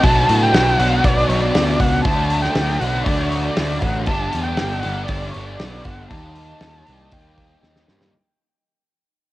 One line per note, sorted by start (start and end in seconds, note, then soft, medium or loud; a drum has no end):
0.02 0.24 B1 medium
0.02 0.77 B2 medium
0.02 0.81 F#3 medium
0.02 0.80 B3 medium
0.02 0.79 D4 medium
0.02 0.78 F#4 loud
0.02 0.45 A5 loud
0.02 kick loud
0.02 open hi-hat medium
0.29 0.50 A2 medium
0.29 open hi-hat medium
0.43 0.80 G5 loud
0.53 0.74 B1 medium
0.53 snare loud
0.53 open hi-hat medium
0.78 1.00 B1 medium
0.78 2.05 B2 medium
0.78 2.07 F#3 medium
0.78 2.07 B3 medium
0.78 2.08 D4 medium
0.78 2.09 F#4 medium
0.78 1.06 F#5 medium
0.78 open hi-hat medium
1.04 1.26 B1 medium
1.04 1.30 D5 loud
1.04 kick loud
1.04 open hi-hat medium
1.29 1.50 B1 medium
1.29 1.43 C#5 medium
1.29 open hi-hat soft
1.41 1.81 D5 medium
1.55 1.76 D2 medium
1.55 snare loud
1.55 open hi-hat medium
1.80 2.01 C#2 medium
1.80 2.04 F#5 medium
1.80 kick medium
1.80 open hi-hat medium
2.04 2.47 D2 medium
2.04 2.80 D3 medium
2.04 2.83 F#3 medium
2.04 2.81 A3 medium
2.04 2.43 A5 loud
2.04 kick loud
2.04 open hi-hat medium
2.09 2.82 D4 medium
2.09 2.81 F#4 loud
2.30 open hi-hat medium
2.42 2.81 G5 medium
2.42 snare soft
2.55 2.77 D2 medium
2.55 snare loud
2.55 open hi-hat medium
2.80 3.02 B1 medium
2.80 4.08 A3 medium
2.80 4.09 D4 medium
2.80 4.06 F#4 medium
2.80 3.06 F#5 medium
2.80 open hi-hat medium
2.84 4.06 D3 medium
2.84 4.08 F#3 medium
3.04 3.48 D2 medium
3.04 3.31 D5 medium
3.04 kick loud
3.04 open hi-hat medium
3.30 3.42 C#5 medium
3.30 open hi-hat medium
3.43 3.82 D5 medium
3.57 3.79 D2 medium
3.57 snare loud
3.57 open hi-hat medium
3.81 4.09 A1 medium
3.81 4.07 F#5 medium
3.81 kick medium
3.81 open hi-hat medium
4.06 4.28 G1 medium
4.06 4.82 G2 medium
4.06 4.82 D3 medium
4.06 4.84 G3 medium
4.06 4.83 B3 medium
4.06 4.84 D4 loud
4.06 4.45 A5 loud
4.06 kick loud
4.06 open hi-hat medium
4.10 4.83 G4 medium
4.33 4.55 E2 medium
4.33 open hi-hat medium
4.43 4.82 G5 medium
4.57 4.81 G1 medium
4.57 snare loud
4.57 open hi-hat medium
4.80 5.05 G1 medium
4.80 6.14 D4 medium
4.80 6.14 G4 medium
4.80 5.05 F#5 medium
4.80 open hi-hat medium
4.85 6.10 G2 medium
4.85 6.10 D3 medium
4.85 6.12 G3 medium
4.85 6.09 B3 medium
5.06 5.30 G1 medium
5.06 5.32 D5 medium
5.06 kick loud
5.06 open hi-hat medium
5.31 5.48 C#5 medium
5.31 open hi-hat soft
5.36 5.56 G1 medium
5.46 5.87 D5 medium
5.59 5.81 B1 medium
5.59 snare medium
5.59 open hi-hat medium
5.84 6.06 G1 medium
5.84 6.10 F#5 medium
5.84 kick medium
5.84 open hi-hat medium
6.11 6.53 D#2 medium
6.11 6.85 D#3 medium
6.11 6.86 G3 medium
6.11 6.86 A#3 medium
6.11 6.87 D#4 medium
6.11 6.85 G4 medium
6.11 7.15 A5 loud
6.11 kick medium
6.11 open hi-hat medium
6.35 open hi-hat medium
6.61 6.82 D#2 medium
6.61 snare loud
6.61 open hi-hat medium
6.86 7.08 C2 medium
6.86 8.13 D#3 medium
6.86 8.13 G3 medium
6.86 8.13 A#3 medium
6.86 8.12 D#4 medium
6.86 8.12 G4 medium
6.86 open hi-hat medium
7.11 7.54 D#2 medium
7.11 7.89 G5 medium
7.11 kick loud
7.11 open hi-hat medium
7.38 kick medium
7.38 open hi-hat soft
7.63 7.84 D#2 medium
7.63 snare medium
7.76 snare medium
7.88 8.09 G2 medium
7.88 snare medium
8.01 snare medium